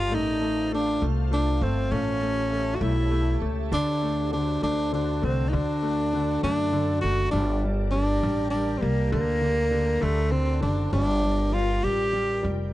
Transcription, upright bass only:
0.00 0.11 G1 medium
0.11 0.97 A1 loud
1.02 1.58 C2 loud
1.61 1.89 G1 loud
1.92 2.77 A1 loud
2.81 3.37 B1 loud
3.41 3.69 C#2 medium
3.72 4.58 D2 loud
4.63 5.19 D2 medium
5.23 5.51 C2 medium
5.53 6.39 D2 loud
6.43 7.00 F#2 loud
7.03 7.31 F#1 medium
7.33 8.19 G1 loud
8.23 8.79 A1 loud
8.82 9.10 C2 medium
9.12 9.98 D2 loud
10.03 10.59 D2 loud
10.63 10.90 F#1 loud
10.93 11.79 G1 loud
11.84 12.40 A1 medium
12.44 12.72 F1 loud

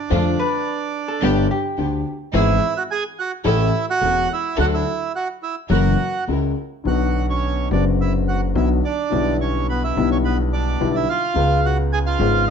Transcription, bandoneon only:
0.00 1.47 D4 medium
0.00 1.47 D5 medium
2.35 2.74 E4 medium
2.35 2.78 E5 loud
2.77 2.83 F#4 medium
2.77 2.83 F#5 medium
2.91 3.04 G#4 medium
2.91 3.03 G#5 loud
3.19 3.32 F#4 medium
3.19 3.31 F#5 medium
3.47 3.86 E4 medium
3.47 3.86 E5 loud
3.90 4.28 F#4 medium
3.90 4.33 F#5 loud
4.33 4.58 E4 medium
4.33 4.58 E5 medium
4.60 4.66 F#4 medium
4.60 4.66 F#5 loud
4.74 5.12 E4 medium
4.74 5.12 E5 medium
5.16 5.28 F#4 medium
5.16 5.28 F#5 medium
5.43 5.55 E4 medium
5.43 5.56 E5 medium
5.71 6.24 F#4 medium
5.71 6.24 F#5 medium
6.87 7.26 F#4 medium
6.87 7.26 F#5 medium
7.30 7.69 C#4 medium
7.30 7.69 C#5 medium
7.72 7.84 D4 medium
7.72 7.85 D5 medium
8.01 8.13 E4 medium
8.01 8.13 E5 medium
8.28 8.41 F#4 medium
8.28 8.41 F#5 medium
8.57 8.69 E4 medium
8.57 8.69 E5 medium
8.85 9.37 D4 medium
8.85 9.37 D5 medium
9.41 9.67 C#4 medium
9.41 9.67 C#5 medium
9.69 9.82 B3 medium
9.69 9.83 B4 medium
9.84 10.10 E4 medium
9.84 10.10 E5 medium
10.11 10.18 C#4 medium
10.11 10.17 C#5 medium
10.24 10.38 B3 medium
10.24 10.37 B4 medium
10.53 10.92 D4 medium
10.53 10.96 D5 medium
10.95 11.08 E4 medium
10.95 11.09 E5 medium
11.09 11.61 F4 medium
11.09 11.66 F5 loud
11.65 11.78 F#4 medium
11.65 11.77 F#5 medium
11.93 11.99 G#4 medium
11.93 11.99 G#5 loud
12.06 12.45 F4 medium
12.06 12.49 F5 medium

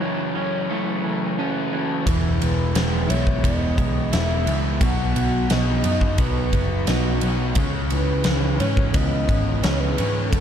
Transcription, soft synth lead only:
0.00 1.36 C#5 medium
2.41 3.11 B4 medium
3.10 3.45 C#5 loud
3.43 4.13 D#5 loud
4.12 4.81 E5 loud
4.82 5.53 F#5 loud
5.51 6.22 D#5 loud
6.20 7.23 B4 medium
7.92 8.61 B4 loud
8.60 8.97 C#5 loud
8.95 9.64 D#5 loud
9.63 9.81 C#5 loud
9.80 10.29 B4 loud
10.30 10.40 A4 loud

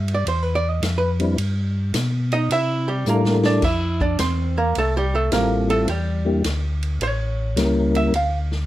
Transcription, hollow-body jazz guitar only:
0.00 0.14 E5 medium
0.14 0.25 D5 medium
0.28 0.43 C5 medium
0.43 0.62 B4 medium
0.55 0.69 D5 loud
0.69 0.83 D#5 medium
0.83 1.01 E5 loud
0.98 1.10 B4 medium
2.33 2.51 D#4 medium
2.33 2.51 D#5 medium
2.52 2.89 E4 medium
2.52 2.88 E5 loud
2.88 3.06 G3 medium
2.88 3.06 G4 medium
3.09 3.45 A#3 medium
3.09 3.45 A#4 medium
3.45 3.63 D4 medium
3.45 3.63 D5 medium
3.64 4.01 E4 medium
3.64 4.00 E5 loud
4.01 4.19 D4 medium
4.01 4.19 D5 medium
4.20 4.57 C4 medium
4.20 4.56 C5 medium
4.57 4.75 A#3 medium
4.57 4.75 A#4 medium
4.78 4.96 A3 medium
4.78 4.95 A4 loud
4.97 5.14 G3 medium
4.97 5.14 G4 medium
5.15 5.32 A3 medium
5.15 5.32 A4 medium
5.33 5.69 A#3 medium
5.33 5.69 A#4 medium
5.70 5.88 A3 medium
5.70 5.88 A4 medium
5.89 6.42 G3 medium
5.89 6.41 G4 medium
7.03 7.92 C#5 medium
7.97 8.14 E5 loud
8.15 8.38 F5 loud

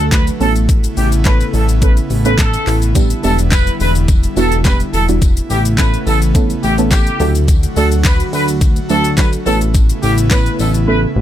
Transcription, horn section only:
0.12 0.23 B4 medium
0.41 0.52 A4 medium
0.97 1.08 G4 medium
1.26 1.46 B4 medium
1.54 1.65 A4 medium
1.82 1.93 B4 medium
2.25 2.35 B4 medium
2.39 2.79 A4 loud
3.24 3.35 A4 medium
3.52 3.73 B4 medium
3.80 3.91 B4 medium
4.37 4.58 A4 medium
4.65 4.76 B4 medium
4.93 5.04 A4 medium
5.50 5.61 G4 medium
5.79 5.99 B4 medium
6.07 6.18 A4 medium
6.63 6.74 G4 medium
6.92 7.32 G4 medium
7.76 7.87 A4 medium
8.05 8.26 B4 medium
8.33 8.44 B4 medium
8.90 9.11 A4 medium
9.18 9.29 B4 medium
9.46 9.57 A4 medium
10.03 10.14 G4 medium
10.31 10.52 B4 medium
10.59 10.71 A4 medium
10.88 10.99 B4 medium

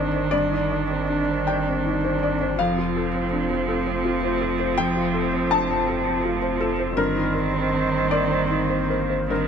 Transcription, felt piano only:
0.00 0.28 G2 medium
0.00 0.35 C4 soft
0.00 0.34 D4 soft
0.00 0.35 D#4 soft
0.00 0.14 C5 medium
0.00 0.31 D5 medium
0.14 0.44 C5 medium
0.31 2.56 G2 medium
0.31 0.70 D5 loud
0.52 0.82 D#4 soft
0.71 1.01 D5 medium
0.91 1.21 C4 soft
1.10 1.29 D4 soft
1.29 1.59 C4 medium
1.47 1.78 D5 medium
1.47 2.18 G5 medium
1.68 1.97 C4 medium
1.86 2.15 D#4 medium
2.04 2.34 C5 medium
2.23 2.52 D5 medium
2.41 2.59 C5 medium
2.59 4.74 F2 medium
2.59 4.74 F5 loud
2.78 3.07 F4 medium
2.96 3.25 A4 medium
3.14 3.43 C4 medium
3.32 3.50 D4 medium
3.50 3.79 C4 medium
3.69 3.98 A4 medium
3.87 4.16 C4 medium
4.05 4.34 F4 medium
4.23 4.53 C5 medium
4.41 4.70 A4 medium
4.59 4.89 C5 medium
4.78 6.93 F2 medium
4.78 5.47 G5 loud
4.96 5.25 F4 medium
5.14 5.43 A4 medium
5.32 5.62 C4 medium
5.51 5.69 D4 medium
5.51 6.57 A5 loud
5.69 5.98 C4 medium
5.88 6.17 A4 medium
6.06 6.35 C4 medium
6.24 6.54 F4 medium
6.42 6.71 C5 medium
6.60 6.95 A4 medium
6.79 6.97 C5 medium
6.97 9.25 G2 medium
6.97 7.32 A#4 loud
7.16 7.46 D#4 medium
7.34 7.64 A#4 medium
7.53 7.84 C4 soft
7.72 7.92 D4 soft
7.92 8.23 C4 medium
8.11 8.42 A#4 medium
8.11 8.85 D5 loud
8.31 8.62 C4 medium
8.50 8.81 D#4 medium
8.70 8.89 C5 medium
8.90 9.21 A#4 medium
8.90 9.08 C5 medium
9.10 9.42 C5 soft
9.30 9.48 G2 medium
9.30 9.48 A#4 medium

